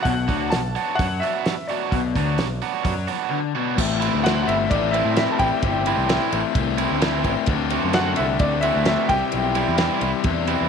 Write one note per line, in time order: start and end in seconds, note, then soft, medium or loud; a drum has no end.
0.00 0.13 F#3 medium
0.00 0.13 B3 medium
0.00 0.12 D4 medium
0.00 0.12 F#4 medium
0.00 0.52 F#5 medium
0.05 0.27 B1 medium
0.05 0.27 B2 loud
0.05 kick loud
0.05 open hi-hat medium
0.27 0.51 D2 medium
0.27 0.51 D3 medium
0.27 0.59 F#3 medium
0.27 0.59 B3 medium
0.27 0.59 D4 medium
0.27 0.59 F#4 medium
0.27 kick medium
0.27 open hi-hat soft
0.50 0.75 B1 medium
0.50 0.71 B2 medium
0.50 0.99 A5 medium
0.50 snare loud
0.50 open hi-hat medium
0.76 1.06 F#3 medium
0.76 1.06 B3 medium
0.76 1.06 D4 medium
0.76 1.06 F#4 medium
0.76 open hi-hat soft
0.95 1.21 F#2 medium
0.95 1.21 F#5 medium
0.95 kick loud
1.00 1.22 F#3 loud
1.00 open hi-hat medium
1.20 1.53 F#4 medium
1.20 1.69 E5 medium
1.20 open hi-hat soft
1.24 1.53 F#3 medium
1.24 1.53 B3 medium
1.24 1.53 D4 medium
1.45 snare loud
1.45 open hi-hat medium
1.67 2.00 F#3 medium
1.67 2.00 B3 medium
1.67 2.00 D4 medium
1.67 1.99 F#4 medium
1.67 3.27 D5 medium
1.67 open hi-hat soft
1.92 2.14 B1 medium
1.92 2.15 B2 loud
1.92 kick medium
1.92 open hi-hat medium
2.15 2.37 D2 medium
2.15 2.38 D3 loud
2.15 2.47 F#3 medium
2.15 2.46 B3 medium
2.15 2.46 D4 medium
2.15 2.46 F#4 medium
2.15 kick medium
2.15 open hi-hat soft
2.38 2.60 B1 medium
2.38 2.58 B2 medium
2.38 snare loud
2.38 open hi-hat medium
2.62 2.93 F#3 medium
2.62 2.92 B3 medium
2.62 2.92 D4 medium
2.62 2.92 F#4 medium
2.62 open hi-hat soft
2.85 3.07 F#2 medium
2.85 3.07 F#3 medium
2.85 kick loud
2.85 open hi-hat medium
3.08 3.39 F#3 medium
3.08 3.39 B3 medium
3.08 3.39 D4 medium
3.08 3.38 F#4 medium
3.08 open hi-hat soft
3.31 3.54 D3 loud
3.55 3.76 B2 medium
3.55 3.78 F#3 medium
3.55 3.79 B3 medium
3.55 3.78 D4 medium
3.55 3.78 F#4 medium
3.76 4.08 A1 medium
3.76 4.70 A2 loud
3.76 4.22 E3 loud
3.76 4.24 A3 loud
3.76 4.25 C4 loud
3.76 4.24 E4 loud
3.76 7.45 G4 medium
3.76 10.69 C5 medium
3.76 7.45 E5 medium
3.76 5.62 A5 medium
3.76 kick loud
3.76 crash loud
4.00 4.23 E3 medium
4.00 4.24 A3 medium
4.00 4.24 C4 medium
4.00 4.24 E4 medium
4.00 ride medium
4.14 4.43 D2 medium
4.21 4.70 E3 medium
4.21 4.55 E3 medium
4.21 4.48 A3 medium
4.21 4.55 A3 medium
4.21 4.48 C4 medium
4.21 4.46 E4 medium
4.21 4.39 F#4 medium
4.21 4.41 F#5 medium
4.25 4.55 C4 medium
4.25 4.55 E4 medium
4.25 snare loud
4.25 ride loud
4.40 4.46 F#4 medium
4.40 4.48 F#5 medium
4.46 4.67 G1 medium
4.46 4.70 A3 medium
4.46 4.71 C4 medium
4.46 4.68 E4 medium
4.46 4.72 E4 medium
4.46 4.71 E5 medium
4.46 ride medium
4.69 5.01 A1 medium
4.69 5.17 A2 medium
4.69 5.17 E3 loud
4.69 4.95 A3 loud
4.69 4.94 C4 medium
4.69 4.91 D4 medium
4.69 4.92 E4 loud
4.69 4.94 D5 loud
4.69 kick loud
4.69 ride loud
4.91 5.16 A3 medium
4.91 5.17 C4 loud
4.91 5.40 C4 medium
4.91 5.13 E4 medium
4.91 5.38 E4 medium
4.91 5.17 E4 medium
4.91 5.15 E5 medium
4.91 ride medium
4.95 5.15 E3 medium
4.95 5.41 A3 medium
5.05 5.25 A2 medium
5.14 5.47 E3 medium
5.14 5.47 A3 medium
5.14 5.22 E4 medium
5.14 5.22 E5 loud
5.14 snare loud
5.14 ride medium
5.18 5.48 C4 medium
5.18 5.48 E4 medium
5.30 5.36 A4 medium
5.30 5.40 A5 medium
5.36 5.50 A1 medium
5.36 5.65 C4 medium
5.36 5.64 E4 medium
5.36 6.27 G4 medium
5.36 6.28 G5 loud
5.36 kick medium
5.36 ride medium
5.41 5.63 A3 medium
5.62 5.93 G1 medium
5.62 6.33 A2 medium
5.62 6.08 E3 medium
5.62 6.09 A3 loud
5.62 6.09 C4 loud
5.62 6.09 E4 loud
5.62 7.47 B5 medium
5.62 kick loud
5.62 ride medium
5.86 6.08 E3 medium
5.86 6.08 A3 medium
5.86 6.09 C4 medium
5.86 6.09 E4 loud
5.86 ride medium
5.97 6.17 C2 medium
6.09 6.55 E3 medium
6.09 6.40 E3 medium
6.09 6.40 A3 medium
6.09 6.31 A3 medium
6.09 6.32 C4 medium
6.09 6.40 C4 medium
6.09 6.40 E4 medium
6.09 6.30 E4 medium
6.09 snare loud
6.09 ride loud
6.31 6.43 A1 medium
6.31 6.55 A3 medium
6.31 6.57 C4 medium
6.31 6.56 E4 medium
6.31 ride medium
6.55 6.85 C2 loud
6.55 7.02 A2 loud
6.55 7.02 E3 medium
6.55 6.80 A3 loud
6.55 6.79 C4 loud
6.55 6.77 E4 loud
6.55 kick loud
6.55 ride loud
6.78 7.00 E3 medium
6.78 7.01 A3 medium
6.78 7.25 A3 medium
6.78 7.01 C4 medium
6.78 7.25 C4 medium
6.78 7.01 E4 medium
6.78 7.24 E4 medium
6.78 ride medium
6.91 7.26 D2 medium
7.01 7.32 E3 medium
7.01 7.32 A3 medium
7.01 7.32 C4 medium
7.01 7.32 E4 medium
7.01 snare loud
7.01 ride loud
7.24 7.35 A1 medium
7.24 7.47 A3 medium
7.24 7.49 C4 medium
7.24 7.47 E4 medium
7.24 kick medium
7.24 ride medium
7.46 7.78 D2 medium
7.46 7.94 D3 loud
7.46 7.95 A3 medium
7.46 7.96 C4 loud
7.46 9.09 F#4 medium
7.46 7.96 F#4 loud
7.46 9.09 D5 medium
7.46 9.08 A5 medium
7.46 kick loud
7.46 ride loud
7.70 7.94 D3 medium
7.70 7.94 A3 medium
7.70 7.94 C4 medium
7.70 7.95 F#4 medium
7.70 ride medium
7.84 8.13 F#2 medium
7.93 8.25 D3 medium
7.93 8.41 D3 medium
7.93 8.25 A3 medium
7.93 8.19 A3 medium
7.93 8.25 C4 medium
7.93 8.19 C4 medium
7.93 8.15 F#4 medium
7.93 8.25 F#4 medium
7.93 8.17 F#4 medium
7.93 8.18 F#5 medium
7.93 snare loud
7.93 ride loud
8.15 8.38 C2 medium
8.15 8.38 E4 medium
8.15 8.43 F#4 medium
8.15 8.41 E5 medium
8.15 ride medium
8.19 8.41 A3 medium
8.19 8.43 C4 medium
8.39 8.70 D2 medium
8.39 8.88 D3 medium
8.39 8.66 A3 loud
8.39 8.62 D4 medium
8.39 8.64 D5 loud
8.39 kick loud
8.39 ride loud
8.43 8.66 C4 medium
8.43 8.64 F#4 loud
8.61 8.86 D3 medium
8.61 8.87 A3 medium
8.61 8.87 C4 medium
8.61 8.84 E4 medium
8.61 8.87 F#4 medium
8.61 8.84 E5 medium
8.61 ride medium
8.65 9.10 A3 medium
8.65 9.11 C4 medium
8.65 9.09 F#4 medium
8.76 8.95 D2 medium
8.85 9.10 D3 medium
8.85 9.11 A3 medium
8.85 9.07 E4 medium
8.85 9.11 E5 medium
8.85 snare loud
8.85 ride medium
8.89 9.11 C4 medium
8.89 9.11 F#4 medium
9.09 9.20 C2 loud
9.09 9.31 C3 medium
9.09 9.32 E3 medium
9.09 9.33 G3 medium
9.09 9.33 C4 medium
9.09 9.34 E4 loud
9.09 9.98 G4 medium
9.09 10.69 G4 medium
9.09 9.98 G5 loud
9.09 10.69 B5 medium
9.09 kick loud
9.09 ride medium
9.13 10.69 E5 medium
9.32 9.63 B1 medium
9.32 10.02 C3 medium
9.32 9.78 E3 loud
9.32 9.79 G3 medium
9.32 9.80 C4 loud
9.32 9.81 E4 loud
9.32 ride loud
9.55 9.76 E3 medium
9.55 9.77 G3 medium
9.55 9.78 C4 medium
9.55 9.78 E4 medium
9.55 ride medium
9.68 9.88 E2 medium
9.77 10.08 E3 medium
9.77 10.23 E3 medium
9.77 10.09 G3 medium
9.77 10.03 G3 medium
9.77 10.09 C4 medium
9.77 10.01 C4 medium
9.77 10.09 E4 medium
9.77 10.00 E4 medium
9.77 snare loud
9.77 ride loud
10.00 10.12 C2 medium
10.00 10.24 G3 medium
10.00 10.24 C4 medium
10.00 10.25 E4 medium
10.00 ride medium
10.23 10.55 E2 loud
10.23 10.69 C3 loud
10.23 10.69 E3 loud
10.23 10.48 G3 loud
10.23 10.47 C4 loud
10.23 10.46 E4 loud
10.23 kick loud
10.23 ride loud
10.46 10.69 E3 medium
10.46 10.69 G3 medium
10.46 10.69 C4 medium
10.46 10.69 E4 medium
10.46 ride medium
10.61 10.69 E2 medium